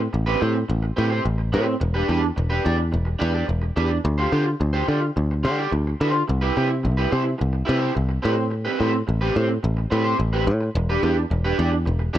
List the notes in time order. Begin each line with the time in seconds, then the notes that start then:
0.13 A1, muted clean electric guitar stroke
0.26 C4 G4 B4
0.40 A2 C4 G4 C5
0.55 muted clean electric guitar stroke
0.69 A1, muted clean electric guitar stroke
0.83 muted clean electric guitar stroke
0.96 A2 C4 G4 B4
1.10 C4 G4 C5
1.25 A1, muted clean electric guitar stroke
1.38 muted clean electric guitar stroke
1.52 A2 C4 G4 B4
1.67 muted clean electric guitar stroke
1.80 E1, muted clean electric guitar stroke
1.94 D4 G4 B4
2.08 E2 D4 G4 B4
2.22 muted clean electric guitar stroke
2.36 E1, muted clean electric guitar stroke
2.50 D4 G4 B4
2.64 E2 D4 G4 D5
2.78 muted clean electric guitar stroke
2.92 E1, muted clean electric guitar stroke
3.05 muted clean electric guitar stroke
3.19 E2 D4 G4 B4
3.34 D4 G4 D5
3.47 E1, muted clean electric guitar stroke
3.62 muted clean electric guitar stroke
3.76 E2 D4 G4 B4
3.91 muted clean electric guitar stroke
4.04 D2, muted clean electric guitar stroke
4.18 F4 G4 C5
4.32 D3 F4 G4 C5
4.45 muted clean electric guitar stroke
4.60 D2, muted clean electric guitar stroke
4.73 F4 G4 C5
4.88 D3 F4 G4 D5
5.01 muted clean electric guitar stroke
5.16 D2, muted clean electric guitar stroke
5.31 muted clean electric guitar stroke
5.43 D3 F4 G4 C5
5.58 F4 G4 D5
5.72 D2, muted clean electric guitar stroke
5.87 muted clean electric guitar stroke
6.01 D3 F4 G4 C5
6.14 muted clean electric guitar stroke
6.28 C2, muted clean electric guitar stroke
6.41 E4 G4 B4
6.56 C3 E4 G4 B4
6.70 muted clean electric guitar stroke
6.83 C2, muted clean electric guitar stroke
6.97 E4 G4 B4
7.10 C3 E4 G4 C5
7.24 muted clean electric guitar stroke
7.38 C2, muted clean electric guitar stroke
7.53 muted clean electric guitar stroke
7.65 C3 E4 G4 B4
7.79 E4 G4 C5
7.95 C2, muted clean electric guitar stroke
8.09 muted clean electric guitar stroke
8.22 A2 C4 G4 B4
8.35 muted clean electric guitar stroke
8.51 muted clean electric guitar stroke
8.65 C4 G4 B4
8.79 A2 C4 G4 B4
8.92 muted clean electric guitar stroke
9.07 A1, muted clean electric guitar stroke
9.21 C4 G4 B4
9.35 A2 C4 G4 C5
9.49 muted clean electric guitar stroke
9.63 A1, muted clean electric guitar stroke
9.77 muted clean electric guitar stroke
9.90 A2 C4 G4 B4
10.04 C4 G4 C5
10.18 A1, muted clean electric guitar stroke
10.33 C4 G4 B4
10.47 A2, muted clean electric guitar stroke
10.61 muted clean electric guitar stroke
10.75 E1, muted clean electric guitar stroke
10.89 D4 G4 B4
11.03 E2 D4 G4 B4
11.17 muted clean electric guitar stroke
11.30 E1, muted clean electric guitar stroke
11.44 D4 G4 B4
11.58 E2 D4 G4 D5
11.72 muted clean electric guitar stroke
11.86 E1, muted clean electric guitar stroke
11.99 muted clean electric guitar stroke
12.13 E2 D4 G4 B4